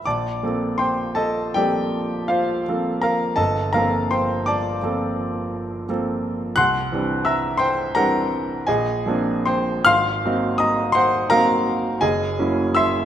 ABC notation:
X:1
M:9/8
L:1/8
Q:3/8=55
K:Gphr
V:1 name="Grand piano"
[d=ad']2 [cgc'] [=Aea] [Gdg]2 [Fcf]2 [Bfb] | [=Ae=a] [Bfb] [cgc'] [dad']4 z2 | [_gc'_g']2 [=eb=e'] [c=gc'] [B_gb]2 [A_ea]2 [c=gc'] | [fc'f']2 [ebe'] [c_gc'] [Bfb]2 [Aea]2 [_fc'_f'] |]
V:2 name="Grand piano"
B,,, [F,B,C=A]3 [F,B,CA]3 [F,B,CA]2 | G,,, [F,B,C=A]3 [F,B,CA]3 [F,B,CA]2 | C,, [=E,G,CD]3 [E,G,CD]2 B,,, [F,B,CD]2 | A,,, [_G,B,CE]3 [G,B,CE]2 _G,,, [G,B,_D_F]2 |]